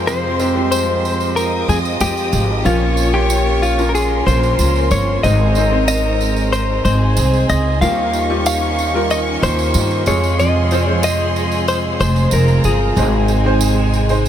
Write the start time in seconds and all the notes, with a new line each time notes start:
Already playing: F2 G#3 C4 F4 C5 C6
0.07 F2 C3 F3 G#3 C4 F4 C5, tambourine
0.39 G#3 C4 F4 G4, tambourine
0.55 F3 G3 G#3 C4 F4 G4
0.62 G#3
0.71 C5, tambourine
1.05 tambourine
1.20 tambourine
1.36 A#4 D#5 D#6, tambourine
1.68 F2 F3 G#3 C4 F4 G#4, tambourine
1.85 tambourine
2.00 F2 F3 G#3 C4 F4 G4, tambourine
2.17 tambourine
2.32 G#1 F3 G#3 C4 F4, tambourine
2.64 A#1 A#2 F3 A#3 C#4 F4 C#5 C#6, tambourine
2.97 tambourine
3.13 A#3 C#4 F4 G4 C#5
3.30 tambourine
3.62 F4, tambourine
3.78 A#3 C#4 F4 A#4, tambourine
3.89 A#4
3.94 G#4 A#4 C6, tambourine
4.26 A#1 F3 A#3 C#4 F4 C5, tambourine
4.43 tambourine
4.58 C#2 F3 A#3 C#4 F4, tambourine
4.75 tambourine
4.91 G1 F3 A#3 C#4 F4 C#5, tambourine
5.23 G#1 G#2 D#3 G#3 C4 D#4 G#4 A#4 C5 D#5 A#5, tambourine
5.55 G#3 C4 D#4 C5, tambourine
5.71 G#3 C4 D#4 G#4 C5
5.88 D#5, tambourine
6.21 tambourine
6.36 tambourine
6.53 C5, tambourine
6.84 G#1 G#3 C4 D#4 G#4 C5 G#5, tambourine
7.16 C2 G#3 C4 D#4 G#4, tambourine
7.33 tambourine
7.49 C#2 G#3 C4 D#4 G#4 D#5, tambourine
7.81 D#2 D#3 G3 A#3 C#4 D#4 F4 G4 A#4 F5 C#6, tambourine
8.13 tambourine
8.30 G3 A#3 D#4 F4 G4
8.46 F5, tambourine
8.79 tambourine
8.94 G3 D#4 F4 A#4
9.10 D#5, tambourine
9.42 D#2 D#3 A#3 F4 G4 C5, tambourine
9.59 tambourine
9.74 G2 D#3 A#3 F4 G4, tambourine
9.91 tambourine
10.06 F2 C3 F3 G#3 F4 G#4 C#5 C6, tambourine
10.24 tambourine
10.39 F2 C3 F3 G#3 F4 G#4 D#5, tambourine
10.71 G#3 C4 F4 C5, tambourine
10.87 F3 G#3 C4 F4 G#4 C5 C#5
11.03 D#5, tambourine
11.36 tambourine
11.52 tambourine
11.68 C5, tambourine
11.99 F1 F3 G#3 F4 G#4 C5, tambourine
12.16 tambourine
12.31 F1 F3 G#3 F4 G#4 A#4 A#5, tambourine
12.48 tambourine
12.64 G1 F3 G#3 F4 G#4, tambourine
12.96 G#1 G#2 G#3 C4 D#4 G4 C5 G#5, tambourine
13.28 tambourine
13.44 G#3 C4 D#4 G4 C5
13.61 tambourine
13.94 tambourine
14.09 G#3 D#4 C5, tambourine